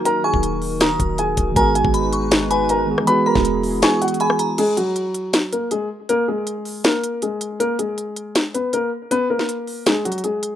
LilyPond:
<<
  \new Staff \with { instrumentName = "Synth bell" } { \time 4/4 \key ges \mixolydian \tempo 4 = 159 r8 des'''4. ees'''2 | aes''4 ces'''8 des'''4 aes''4. | r8 b''4. des'''4 b''8 bes''8 | r1 |
r1 | r1 | r1 | }
  \new Staff \with { instrumentName = "Grand piano" } { \time 4/4 \key ges \mixolydian <bes' bes''>8 <aes' aes''>4. <bes' bes''>4 <aes' aes''>4 | <bes' bes''>8 <aes' aes''>2 <ces'' ces'''>8 <bes' bes''>8 r8 | <b' b''>8 <bes' bes''>4. <gis' gis''>8 <fis' fis''>8 <gis' gis''>4 | <aes aes'>8 <ges ges'>2 <bes bes'>8 <aes aes'>8 r8 |
<bes bes'>8 <aes aes'>4. <bes bes'>4 <aes aes'>4 | <bes bes'>8 <aes aes'>2 <ces' ces''>8 <bes bes'>8 r8 | <ces' ces''>8 <bes bes'>4. <aes aes'>8 <ges ges'>8 <aes aes'>4 | }
  \new Staff \with { instrumentName = "Analog synth pad" } { \time 4/4 \key ges \mixolydian << { <ees ees' bes'>1 | <aes ees' ces''>1 | <e e' gis'>1 | r1 |
r1 | r1 | r1 | } \\ { ges'1 | ges'1~ | ges'1 | r1 |
r1 | r1 | r1 | } >> }
  \new Staff \with { instrumentName = "Tine electric piano" } { \time 4/4 \key ges \mixolydian <ees ges bes ges' bes'>1 | <ees aes ces' ges' aes'>2.~ <ees aes ces' ges' aes'>8 <ees aes ces' ges' aes'>8 | <e gis b fis' gis'>1 | r1 |
r1 | r1 | r1 | }
  \new Staff \with { instrumentName = "808-style bass" } { \clef bass \time 4/4 \key ges \mixolydian r8. ees,,4.~ ees,,16 ees,,4 ees,,8 | aes,,8. aes,,2. r16 | r8. e,,4~ e,,16 r2 | r1 |
r1 | r1 | r1 | }
  \new DrumStaff \with { instrumentName = "Drums" } \drummode { \time 4/4 hh8. bd16 hh8 hho8 <hh ss sn>8 <hh bd>8 hh8 <hh bd>8 | <hh bd>8 hh16 bd16 hh8 hh8 <hh sn>8 hh8 hh8. ss16 | hh8. <bd sn>16 hh8 hho8 \tuplet 3/2 { <hh sn>16 r16 r16 hh16 hh16 hh16 } hh16 ss16 hh8 | <cymc hh>8 hh8 hh8 hh8 <hh sn>8 hh8 hh4 |
hh4 hh8 hho8 <hh sn>8 hh8 hh8 hh8 | hh8 hh8 hh8 hh8 <hh sn>8 hh8 hh4 | hh8. sn16 hh8 hho8 \tuplet 3/2 { <hh sn>16 r16 r16 hh16 hh16 hh16 } hh8 hh8 | }
>>